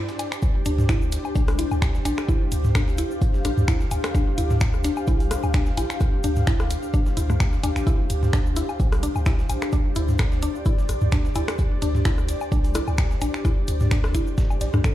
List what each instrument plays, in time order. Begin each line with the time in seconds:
Already playing: ambient pad D4 G4 C5 D5
0.09 snare, tambourine, cabasa
0.19 snare, closed hi-hat, cabasa, low woodblock
0.32 finger snap, tambourine, cabasa
0.42 sub bass D2, kick, tambourine, cabasa
0.65 sub bass D2, synth arpeggio sound D4, closed hi-hat, tambourine, cabasa
0.78 snare, mid tom, cabasa
0.89 synth arpeggio sound E4, finger snap, kick, cross-stick, snare, tambourine, cabasa
1.02 cabasa
1.12 snare, closed hi-hat, tambourine, cabasa
1.25 cabasa, low woodblock
1.35 sub bass C2, synth arpeggio sound D4, kick, tambourine, cabasa
1.48 cross-stick, closed hi-hat, cabasa
1.59 synth arpeggio sound E4, closed hi-hat, tambourine, cabasa
1.71 sub bass D2, cabasa, low woodblock
1.81 ambient pad F5, finger snap, kick, snare, tambourine, cabasa
1.95 snare, cabasa
2.05 sub bass A1, synth arpeggio sound D4, closed hi-hat, tambourine, cabasa, low woodblock
2.18 finger snap, cross-stick, snare, cabasa
2.28 sub bass D2, synth arpeggio sound E4, kick, tambourine, cabasa
2.52 sub bass D2, closed hi-hat, tambourine, cabasa
2.64 snare, mid tom, cabasa
2.75 synth arpeggio sound D4, finger snap, kick, cross-stick, snare, tambourine, cabasa
2.88 snare, cabasa
2.98 synth arpeggio sound E4, closed hi-hat, tambourine, cabasa
3.11 cabasa
3.21 kick, tambourine, cabasa
3.34 snare, cabasa
3.45 sub bass A1, synth arpeggio sound D4, cross-stick, closed hi-hat, tambourine, cabasa
3.57 sub bass D2, mid tom, cabasa
3.68 synth arpeggio sound E4, finger snap, kick, snare, tambourine, cabasa
3.80 snare, cabasa
3.91 sub bass D2, closed hi-hat, tambourine, cabasa, low woodblock
4.04 finger snap, cross-stick, closed hi-hat, cabasa
4.15 sub bass D2, synth arpeggio sound D4, kick, tambourine, cabasa
4.38 sub bass D2, synth arpeggio sound E4, closed hi-hat, tambourine, cabasa
4.50 snare, mid tom, cabasa
4.60 finger snap, kick, snare, tambourine, cabasa
4.74 cross-stick, cabasa
4.84 synth arpeggio sound D4, snare, closed hi-hat, tambourine, cabasa
4.96 cabasa, low woodblock
5.07 sub bass C2, synth arpeggio sound E4, kick, tambourine, cabasa
5.20 closed hi-hat, cabasa
5.31 cross-stick, closed hi-hat, tambourine, cabasa
5.43 sub bass D2, cabasa, low woodblock
5.54 synth arpeggio sound D4, finger snap, kick, snare, tambourine, cabasa
5.66 snare, cabasa
5.77 sub bass A1, synth arpeggio sound E4, closed hi-hat, tambourine, cabasa, low woodblock
5.90 finger snap, snare, cabasa
6.00 sub bass D2, kick, cross-stick, tambourine, cabasa
6.24 sub bass D2, synth arpeggio sound D4, closed hi-hat, tambourine, cabasa
6.36 snare, mid tom, cabasa
6.47 synth arpeggio sound E4, finger snap, kick, snare, tambourine, cabasa
6.59 cross-stick, snare, cabasa
6.70 closed hi-hat, tambourine, cabasa
6.83 cabasa
6.94 synth arpeggio sound D4, kick, tambourine, cabasa
7.06 snare, cabasa
7.17 sub bass D2, synth arpeggio sound E4, closed hi-hat, tambourine, cabasa
7.30 synth arpeggio sound A3, cross-stick, mid tom, cabasa
7.40 finger snap, kick, snare, tambourine, cabasa
7.53 snare, cabasa
7.63 sub bass D2, synth arpeggio sound D4, closed hi-hat, tambourine, cabasa, low woodblock
7.76 sub bass A1, finger snap, closed hi-hat, cabasa
7.87 sub bass D2, synth arpeggio sound E4, kick, tambourine, cabasa
8.10 sub bass D2, closed hi-hat, tambourine, cabasa
8.23 snare, mid tom, cabasa
8.33 synth arpeggio sound D4, finger snap, kick, cross-stick, snare, tambourine, cabasa
8.46 cabasa
8.56 synth arpeggio sound E4, snare, closed hi-hat, tambourine, cabasa
8.69 cabasa, low woodblock
8.80 sub bass C2, kick, tambourine, cabasa
8.92 cross-stick, closed hi-hat, cabasa
9.03 synth arpeggio sound D4, closed hi-hat, tambourine, cabasa
9.15 sub bass D2, cabasa, low woodblock
9.25 synth arpeggio sound E4, ambient pad D5, finger snap, kick, snare, tambourine, cabasa
9.39 snare, cabasa
9.49 sub bass A1, closed hi-hat, tambourine, cabasa, low woodblock
9.62 finger snap, cross-stick, snare, cabasa
9.72 sub bass D2, synth arpeggio sound D4, kick, tambourine, cabasa
9.95 sub bass D2, synth arpeggio sound E4, closed hi-hat, tambourine, cabasa
10.08 snare, mid tom, cabasa
10.19 finger snap, kick, cross-stick, snare, tambourine, cabasa
10.32 snare, cabasa
10.42 synth arpeggio sound D4, closed hi-hat, tambourine, cabasa
10.55 cabasa
10.65 synth arpeggio sound E4, kick, tambourine, cabasa
10.78 snare, cabasa
10.89 sub bass A1, cross-stick, closed hi-hat, tambourine, cabasa
11.01 sub bass D2, mid tom, cabasa
11.12 synth arpeggio sound D4, finger snap, kick, snare, tambourine, cabasa
11.25 snare, cabasa
11.35 sub bass D2, synth arpeggio sound E4, closed hi-hat, tambourine, cabasa, low woodblock
11.48 finger snap, cross-stick, closed hi-hat, cabasa
11.58 sub bass D2, kick, tambourine, cabasa
11.82 sub bass D2, synth arpeggio sound D4, closed hi-hat, tambourine, cabasa
11.95 snare, mid tom, cabasa
12.05 synth arpeggio sound E4, finger snap, kick, snare, tambourine, cabasa
12.18 cross-stick, cabasa
12.29 snare, closed hi-hat, tambourine, cabasa
12.41 cabasa, low woodblock
12.52 sub bass C2, synth arpeggio sound D4, kick, tambourine, cabasa
12.64 closed hi-hat, cabasa
12.75 synth arpeggio sound E4, cross-stick, closed hi-hat, tambourine, cabasa
12.87 sub bass D2, cabasa, low woodblock
12.98 finger snap, kick, snare, tambourine, cabasa
13.11 snare, cabasa
13.21 sub bass A1, synth arpeggio sound D4, closed hi-hat, tambourine, cabasa, low woodblock
13.34 finger snap, snare, cabasa
13.45 sub bass D2, synth arpeggio sound E4, kick, cross-stick, tambourine, cabasa
13.68 sub bass D2, closed hi-hat, tambourine, cabasa
13.80 snare, mid tom, cabasa
13.91 synth arpeggio sound D4, finger snap, kick, snare, tambourine, cabasa
14.04 cross-stick, snare, cabasa
14.14 synth arpeggio sound E4, kick, closed hi-hat, tambourine, cabasa
14.27 cabasa
14.38 kick, snare, tambourine, cabasa
14.50 cabasa, low woodblock
14.61 sub bass A1, synth arpeggio sound D5, snare, closed hi-hat, tambourine, cabasa
14.73 sub bass D2, synth arpeggio sound D4, cross-stick, mid tom, cabasa
14.84 sub bass A1, synth arpeggio sound A4, finger snap, kick, tambourine, cabasa